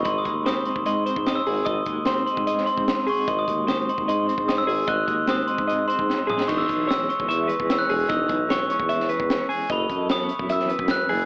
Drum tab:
CC |----------------|----------------|----------------|----------------|
HH |x-x-x-x-x-x-x-o-|x-x-x-x-x-x-x-o-|x-x-x-x-x-x-x-o-|x-x-x-x-x-x-----|
SD |----o-------o---|----o----o--oo--|----o-------o---|----o-------o--o|
T2 |----------------|----------------|----------------|--------------o-|
BD |o-o----o---o----|o-o----o---o----|o-o----o---o----|o-o----o---o----|

CC |x---------------|----------------|----------------|
HH |x-x-x-x-x-x-x-o-|x-x-x-x-x-x-x-o-|x-x-x-x-x-x-x-o-|
SD |----o-------o---|----o----o--o---|----o----o--o---|
T2 |----------------|----------------|----------------|
BD |o-o----o---o----|o-o----o---o----|o-o----o---o----|